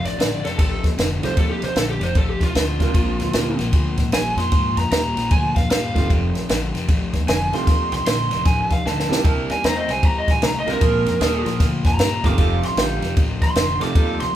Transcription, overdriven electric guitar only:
0.00 0.16 F2 medium
0.00 0.16 C3 medium
0.19 0.41 F2 medium
0.19 0.41 D3 medium
0.44 0.57 F2 medium
0.44 0.57 C3 medium
0.58 0.94 F2 medium
0.58 0.95 C3 medium
0.98 1.20 F2 medium
0.98 1.20 D3 loud
1.23 1.36 F2 medium
1.23 1.36 C3 medium
1.38 1.74 F2 medium
1.38 1.74 C3 medium
1.77 1.99 F2 medium
1.77 1.99 D3 medium
2.01 2.14 F2 medium
2.01 2.14 C3 medium
2.16 2.52 F2 medium
2.16 2.53 C3 medium
2.55 2.78 F2 medium
2.55 2.78 D3 loud
2.79 2.93 F2 medium
2.79 2.93 C3 medium
2.94 3.31 A#2 medium
2.94 3.31 F3 medium
3.34 3.57 A#2 medium
3.34 3.57 G3 medium
3.59 3.72 A#2 medium
3.59 3.72 F3 medium
3.73 4.10 A#2 medium
3.73 4.10 F3 medium
4.12 4.35 A#2 medium
4.12 4.36 G3 medium
4.38 4.51 A#2 medium
4.38 4.51 F3 medium
4.52 4.89 A#2 medium
4.52 4.89 F3 medium
4.92 5.14 A#2 medium
4.92 5.15 G3 medium
5.17 5.30 A#2 medium
5.17 5.30 F3 medium
5.31 5.67 A#2 medium
5.31 5.67 F3 medium
5.71 5.93 A#2 medium
5.71 5.93 G3 medium
5.96 6.08 A#2 medium
5.96 6.09 F3 medium
6.10 6.46 F2 medium
6.10 6.47 C3 medium
6.49 6.71 F2 medium
6.49 6.72 D3 medium
6.74 6.87 F2 medium
6.74 6.87 C3 medium
6.88 7.25 F2 medium
6.88 7.25 C3 medium
7.27 7.50 F2 medium
7.27 7.50 D3 medium
7.53 7.66 F2 medium
7.53 7.66 C3 medium
7.67 8.03 F2 medium
7.67 8.04 C3 medium
8.06 8.28 F2 medium
8.06 8.29 D3 medium
8.31 8.44 F2 medium
8.31 8.44 C3 medium
8.45 8.82 F2 medium
8.45 8.82 C3 medium
8.86 9.08 F2 medium
8.86 9.08 D3 medium
9.10 9.23 F2 medium
9.10 9.23 C3 medium
9.25 9.61 C3 medium
9.25 9.61 G3 medium
9.63 9.86 C3 medium
9.63 9.86 A3 medium
9.88 10.01 C3 medium
9.88 10.02 G3 medium
10.04 10.40 C3 medium
10.04 10.40 G3 medium
10.42 10.64 C3 medium
10.42 10.65 A3 medium
10.66 10.80 C3 medium
10.66 10.80 G3 medium
10.81 11.17 A#2 medium
10.81 11.18 F3 medium
11.21 11.43 A#2 medium
11.21 11.43 G3 medium
11.45 11.58 A#2 medium
11.45 11.58 F3 medium
11.60 11.96 A#2 medium
11.60 11.97 F3 medium
12.00 12.22 A#2 medium
12.00 12.22 G3 medium
12.24 12.37 A#2 medium
12.24 12.37 F3 medium
12.38 12.75 F2 medium
12.38 12.75 C3 medium
12.78 13.00 F2 medium
12.78 13.01 D3 medium
13.03 13.16 F2 medium
13.03 13.16 C3 medium
13.17 13.53 F2 medium
13.17 13.54 C3 loud
13.56 13.79 F2 medium
13.56 13.79 D3 medium
13.81 13.94 F2 medium
13.81 13.94 C3 medium
13.95 14.32 F2 medium
13.95 14.32 C3 medium

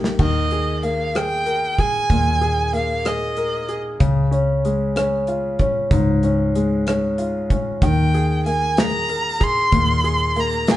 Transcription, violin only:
0.21 0.80 D#5 medium
0.85 1.18 F5 medium
1.16 1.81 G5 medium
1.80 2.75 G#5 medium
2.75 3.08 F5 medium
3.06 3.78 D#5 medium
7.84 8.43 G5 medium
8.47 8.80 G#5 medium
8.79 9.45 A#5 medium
9.43 10.41 C6 loud
10.40 10.73 A#5 medium
10.71 10.77 G#5 loud

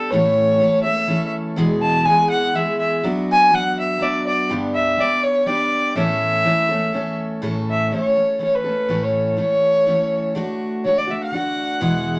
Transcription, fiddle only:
0.00 0.13 A4 medium
0.11 0.83 C#5 loud
0.83 1.29 E5 loud
1.82 2.07 A5 loud
2.05 2.29 G#5 loud
2.30 2.57 F#5 loud
2.56 2.79 E5 medium
2.80 3.02 E5 medium
3.32 3.56 G#5 loud
3.54 3.78 F#5 loud
3.80 4.04 E5 medium
4.02 4.26 D5 medium
4.27 4.49 D5 medium
4.74 5.02 E5 loud
5.01 5.25 D5 loud
5.24 5.49 C#5 medium
5.48 5.96 D5 loud
5.98 7.15 E5 loud
7.70 7.93 E5 medium
7.94 8.40 C#5 medium
8.44 8.57 C#5 medium
8.55 9.05 B4 medium
9.04 9.38 C#5 medium
9.40 10.34 C#5 loud
10.85 11.00 C#5 loud
10.98 11.13 D5 medium
11.11 11.21 E5 medium
11.24 12.17 F#5 medium

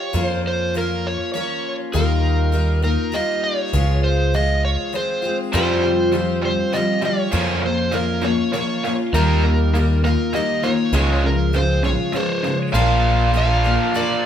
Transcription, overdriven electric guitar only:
5.52 5.81 F3 medium
5.52 5.82 G3 medium
5.52 5.82 C4 medium
5.84 6.11 F3 medium
5.84 6.11 G3 medium
6.13 6.40 F3 medium
6.13 6.40 G3 medium
6.42 6.70 F3 medium
6.42 6.70 G3 medium
6.72 7.00 F3 medium
6.72 7.00 G3 medium
7.01 7.30 F3 medium
7.01 7.30 G3 medium
7.31 7.61 F3 medium
7.31 7.61 A#3 medium
7.31 7.61 C#4 medium
7.62 7.90 F3 medium
7.62 7.90 A#3 medium
7.92 8.20 F3 medium
7.92 8.20 A#3 medium
8.22 8.50 F3 medium
8.22 8.50 A#3 medium
8.52 8.80 F3 medium
8.52 8.80 A#3 medium
8.83 9.11 F3 medium
8.83 9.11 A#3 medium
9.14 9.42 D#3 medium
9.14 9.43 A#3 medium
9.14 9.43 D#4 medium
9.43 9.71 D#3 medium
9.43 9.71 A#3 medium
9.74 10.01 D#3 medium
9.74 10.01 A#3 medium
10.04 10.31 D#3 medium
10.04 10.31 A#3 medium
10.33 10.61 D#3 medium
10.33 10.61 A#3 medium
10.64 10.91 D#3 medium
10.64 10.91 A#3 medium
10.94 11.22 C#3 medium
10.94 11.22 F3 medium
10.94 11.23 G#3 medium
11.23 11.51 C#3 medium
11.23 11.51 F3 medium
11.54 11.81 C#3 medium
11.54 11.82 F3 medium
11.83 12.11 C#3 medium
11.83 12.11 F3 medium
12.12 12.40 C#3 medium
12.12 12.41 F3 medium
12.43 12.71 C#3 medium
12.43 12.71 F3 medium
12.72 14.26 A#2 medium
12.72 14.26 F3 medium
12.72 14.26 A#3 medium
12.72 14.26 D4 medium
12.72 14.26 F4 medium

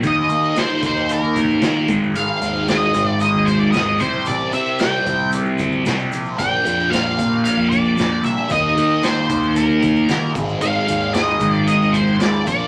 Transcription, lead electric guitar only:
0.07 0.60 D#5 medium
0.58 0.82 C5 medium
0.86 1.12 C5 medium
1.13 1.87 A#4 medium
2.16 2.65 F5 medium
2.69 3.09 D#5 medium
3.09 3.20 D5 medium
3.22 3.46 D#5 medium
3.46 3.59 C5 medium
3.59 3.71 D5 medium
3.72 4.00 D#5 medium
4.00 4.28 C5 medium
4.27 4.52 D5 medium
4.54 4.78 E5 medium
4.80 5.29 G5 medium
6.39 6.93 G5 medium
6.90 7.40 F5 medium
7.44 7.69 F5 medium
7.69 8.24 D5 medium
8.25 8.52 E5 medium
8.52 9.06 D#5 medium
9.03 9.56 C5 medium
9.56 10.32 A#4 medium
10.62 11.14 F5 loud
11.14 11.54 D#5 medium
11.54 11.67 D5 medium
11.68 11.95 D#5 medium
11.93 12.21 C5 medium
12.21 12.46 D5 medium
12.48 12.68 D5 medium

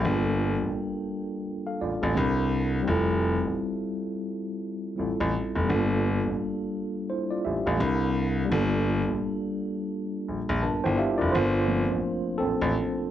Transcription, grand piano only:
0.05 0.53 G1 medium
0.61 0.67 A1 soft
1.81 1.90 A1 soft
2.03 2.14 A1 medium
2.17 2.77 C2 medium
2.88 3.35 F1 medium
3.44 3.49 A1 soft
4.99 5.07 A1 soft
5.20 5.32 A1 medium
5.55 5.67 F1 medium
5.70 6.17 G1 medium
6.26 6.31 A1 soft
7.46 7.54 A1 soft
7.67 7.79 A1 medium
7.80 8.41 C2 medium
8.52 9.00 G1 loud
9.08 9.13 A#1 soft
10.28 10.37 A#1 soft
10.49 10.61 A#1 medium
10.64 10.72 G1 soft
10.86 10.97 G1 medium
11.21 11.32 F1 medium
11.35 11.82 G1 medium
11.91 11.96 A1 soft
12.40 12.48 A1 soft
12.62 12.73 A1 medium

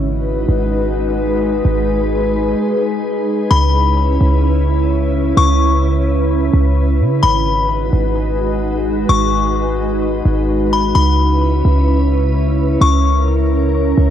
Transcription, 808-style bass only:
0.00 0.46 G#1 loud
0.49 1.61 G#1 loud
1.65 2.54 G#1 loud
3.51 4.18 C#2 loud
4.21 5.33 C#2 loud
5.37 6.49 C#2 loud
6.53 7.01 C#2 loud
7.00 7.22 C#3 loud
7.23 7.90 G#1 loud
7.93 9.05 G#1 loud
9.09 10.21 G#1 loud
10.26 10.93 G#1 loud
10.95 11.62 C#2 loud
11.65 12.77 C#2 loud
12.81 13.94 C#2 loud
13.98 14.10 C#2 loud

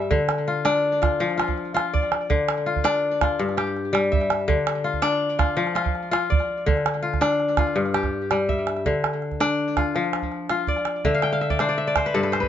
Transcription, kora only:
0.00 0.17 G2 medium
0.00 0.17 G3 medium
0.00 0.15 D4 medium
0.00 0.61 G4 medium
0.00 0.54 E5 medium
0.11 1.26 D3 medium
0.48 1.01 F4 medium
0.65 2.33 D4 medium
1.02 1.37 F4 medium
1.20 2.35 F3 medium
1.38 1.74 F4 medium
1.74 2.66 F4 medium
1.94 3.04 D5 medium
2.30 3.44 D3 medium
2.66 3.22 F4 medium
2.84 4.52 D4 medium
3.22 4.18 F4 medium
3.39 4.53 G2 medium
3.57 4.99 G4 medium
3.93 4.53 G3 medium
4.12 4.90 E5 medium
4.48 5.63 D3 medium
4.84 5.38 F4 medium
5.02 6.70 D4 medium
5.39 5.75 F4 medium
5.57 6.72 F3 medium
5.75 6.11 F4 medium
6.11 7.02 F4 medium
6.30 7.41 D5 medium
6.66 7.81 D3 medium
7.03 7.58 F4 medium
7.21 8.89 D4 medium
7.58 8.55 F4 medium
7.76 8.91 G2 medium
7.94 9.35 G4 medium
8.31 8.91 G3 medium
8.49 9.52 E5 medium
8.86 10.00 D3 medium
9.41 11.09 D4 medium
9.77 10.49 F4 medium
9.96 11.10 F3 medium
10.50 11.11 F4 medium
10.68 11.50 D5 medium
11.05 12.19 D3 medium
11.05 11.39 E5 medium
11.14 11.32 F5 medium
11.23 12.16 G5 medium
11.33 11.84 F5 medium
11.41 11.77 E5 medium
11.50 11.68 D5 medium
11.60 12.48 D4 medium
11.60 11.96 C5 medium
11.69 11.87 D5 medium
11.78 12.48 E5 medium
11.87 12.48 D5 medium
11.97 12.29 C5 medium
12.06 12.23 B4 medium
12.14 12.48 G2 medium
12.14 12.48 A4 medium
12.23 12.40 B4 medium
12.32 12.48 C5 medium
12.40 12.48 B4 medium

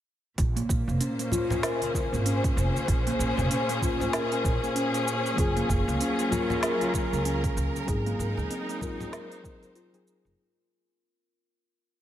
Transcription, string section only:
0.37 5.38 A#2 medium
0.47 6.39 A#3 medium
0.92 6.39 C5 medium
1.23 7.88 C#4 medium
1.43 8.89 G#4 medium
5.38 7.88 F#3 medium
5.69 7.88 F4 medium
6.52 10.38 A#4 medium
7.88 10.38 G#3 medium
8.03 10.38 D#4 medium
8.48 10.38 F#3 medium
9.03 10.38 C5 medium

